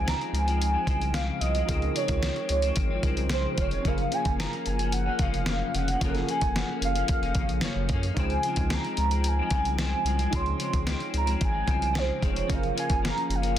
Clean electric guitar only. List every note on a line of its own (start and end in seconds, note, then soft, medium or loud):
0.05 0.19 C#3 medium
0.05 0.20 F3 medium
0.05 0.20 G#3 medium
0.05 0.17 C4 medium
0.18 0.47 G#3 soft
0.18 0.45 C4 medium
0.23 0.48 F3 soft
0.46 0.75 F3 soft
0.46 0.74 G#3 medium
0.46 0.72 C4 medium
0.74 0.87 F3 soft
0.74 0.88 G#3 medium
0.74 0.87 C4 medium
0.86 1.13 C#3 medium
0.86 1.14 F3 medium
0.86 1.15 G#3 medium
0.86 1.15 C4 medium
1.14 1.41 C#3 medium
1.14 1.42 F3 medium
1.14 1.42 G#3 medium
1.14 1.43 C4 medium
1.42 1.55 C#3 medium
1.42 1.56 F3 medium
1.42 1.55 G#3 medium
1.42 1.53 C4 medium
1.54 1.69 G#3 medium
1.54 1.68 C4 medium
1.59 1.68 F3 soft
1.68 1.93 C#3 medium
1.68 1.95 F3 medium
1.68 1.97 G#3 medium
1.68 1.97 C4 medium
1.94 2.21 C#3 medium
1.94 2.22 F3 medium
1.94 2.23 G#3 medium
1.99 2.24 C4 medium
2.22 2.36 C#3 medium
2.22 2.36 F3 medium
2.22 2.36 G#3 medium
2.22 2.34 C4 medium
2.35 2.64 F3 soft
2.35 2.64 G#3 medium
2.35 2.63 C4 medium
2.64 2.92 F3 soft
2.64 2.91 G#3 medium
2.64 2.89 C4 medium
2.90 3.05 G#3 medium
2.90 3.04 C4 medium
2.95 3.04 F3 soft
3.04 3.29 C#3 medium
3.04 3.29 F3 medium
3.04 3.30 G#3 medium
3.04 3.31 C4 medium
3.30 3.57 C#3 medium
3.30 3.58 F3 medium
3.30 3.58 G#3 medium
3.30 3.59 C4 medium
3.58 3.71 C#3 medium
3.58 3.72 F3 medium
3.58 3.73 G#3 medium
3.62 3.71 C4 medium
3.73 3.86 G#3 medium
3.73 3.85 C4 medium
3.77 3.85 F3 soft
3.85 4.12 F#2 medium
3.85 4.10 C#3 medium
3.85 4.12 F3 medium
3.85 4.13 A#3 medium
3.85 4.13 C#4 medium
4.12 4.38 C#3 medium
4.12 4.39 F3 medium
4.12 4.39 A#3 medium
4.12 4.40 C#4 medium
4.38 4.52 F#2 medium
4.38 4.52 C#3 medium
4.38 4.53 F3 medium
4.38 4.53 A#3 medium
4.38 4.51 C#4 medium
4.53 4.81 F3 soft
4.53 4.80 A#3 medium
4.53 4.78 C#4 medium
4.79 5.08 F3 soft
4.79 5.06 A#3 soft
4.79 5.05 C#4 medium
5.06 5.20 F3 soft
5.06 5.21 A#3 medium
5.06 5.20 C#4 medium
5.20 5.47 C#3 medium
5.20 5.48 F3 medium
5.20 5.48 A#3 medium
5.20 5.49 C#4 medium
5.47 5.74 F#2 medium
5.47 5.74 C#3 medium
5.47 5.75 F3 medium
5.47 5.75 A#3 medium
5.47 5.76 C#4 medium
5.75 5.88 C#3 medium
5.75 5.89 F3 medium
5.75 5.90 A#3 medium
5.75 5.88 C#4 medium
5.89 6.03 A#3 medium
5.89 6.02 C#4 medium
5.93 6.03 F3 soft
6.03 6.29 F#2 medium
6.03 6.26 C#3 medium
6.03 6.28 F3 medium
6.03 6.30 A#3 medium
6.03 6.30 C#4 medium
6.28 6.55 C#3 medium
6.28 6.56 F3 medium
6.28 6.56 A#3 medium
6.32 6.57 C#4 medium
6.56 6.69 F#2 medium
6.56 6.69 C#3 medium
6.56 6.70 F3 medium
6.56 6.70 A#3 medium
6.56 6.67 C#4 medium
6.69 6.97 A#3 medium
6.69 6.94 C#4 medium
6.73 6.98 F3 soft
6.95 7.23 A#3 soft
6.95 7.21 C#4 medium
7.00 7.25 F3 soft
7.22 7.37 F3 soft
7.22 7.37 A#3 medium
7.22 7.36 C#4 medium
7.37 7.62 C#3 medium
7.37 7.63 F3 medium
7.37 7.63 A#3 medium
7.37 7.64 C#4 medium
7.63 7.90 F#2 loud
7.63 7.88 C#3 medium
7.63 7.90 F3 medium
7.63 7.91 A#3 loud
7.63 7.91 C#4 loud
7.89 8.03 C#3 medium
7.89 8.04 F3 medium
7.89 8.05 A#3 medium
7.93 8.03 C#4 medium
8.05 8.17 F3 soft
8.05 8.18 A#3 soft
8.05 8.18 C#4 medium
8.18 8.43 C#3 medium
8.18 8.44 F3 medium
8.18 8.45 G#3 medium
8.18 8.45 C4 medium
8.44 8.70 C#3 medium
8.44 8.71 F3 medium
8.44 8.71 G#3 medium
8.44 8.72 C4 medium
8.71 8.85 C#3 medium
8.71 8.85 F3 medium
8.71 8.85 G#3 medium
8.71 8.83 C4 medium
8.84 9.12 G#3 medium
8.84 9.10 C4 medium
8.88 9.14 F3 soft
9.11 9.40 F3 soft
9.11 9.39 G#3 medium
9.11 9.38 C4 medium
9.39 9.51 F3 soft
9.39 9.52 G#3 medium
9.39 9.52 C4 medium
9.51 9.77 C#3 medium
9.51 9.78 F3 medium
9.51 9.78 G#3 medium
9.51 9.79 C4 medium
9.78 10.03 C#3 medium
9.78 10.05 F3 medium
9.78 10.05 G#3 medium
9.78 10.07 C4 medium
10.04 10.19 C#3 medium
10.04 10.20 F3 medium
10.04 10.18 G#3 medium
10.04 10.16 C4 medium
10.17 10.33 G#3 medium
10.17 10.32 C4 medium
10.21 10.31 F3 soft
10.31 10.57 C#3 medium
10.31 10.58 F3 medium
10.31 10.60 G#3 medium
10.31 10.60 C4 medium
10.58 10.84 C#3 medium
10.58 10.86 F3 medium
10.58 10.87 G#3 medium
10.58 10.88 C4 medium
10.85 11.00 C#3 medium
10.85 11.01 F3 medium
10.85 10.99 G#3 medium
10.85 10.98 C4 medium
10.99 11.28 F3 soft
10.99 11.27 G#3 medium
10.99 11.25 C4 medium
11.26 11.53 G#3 medium
11.26 11.51 C4 medium
11.30 11.55 F3 soft
11.52 11.68 G#3 soft
11.52 11.67 C4 medium
11.56 11.67 F3 soft
11.66 11.92 C#3 medium
11.66 11.93 F3 medium
11.66 11.95 G#3 medium
11.70 11.95 C4 medium
11.93 12.20 C#3 medium
11.93 12.22 F3 medium
11.93 12.22 G#3 medium
11.93 12.23 C4 medium
12.21 12.35 C#3 medium
12.21 12.36 F3 medium
12.21 12.35 G#3 medium
12.25 12.34 C4 medium
12.35 12.48 F3 soft
12.35 12.49 G#3 soft
12.35 12.49 C4 medium
12.47 12.76 F#2 medium
12.47 12.73 C#3 medium
12.47 12.74 F3 medium
12.47 12.76 A#3 medium
12.47 12.77 C#4 medium
12.74 13.02 C#3 medium
12.74 13.03 F3 medium
12.74 13.04 A#3 medium
12.74 13.04 C#4 medium
13.02 13.16 F#2 medium
13.02 13.17 C#3 medium
13.02 13.17 F3 medium
13.02 13.15 A#3 medium
13.02 13.13 C#4 medium
13.14 13.45 F3 soft
13.14 13.43 A#3 medium
13.14 13.41 C#4 medium
13.42 13.59 F3 soft
13.42 13.59 A#3 medium
13.42 13.59 C#4 medium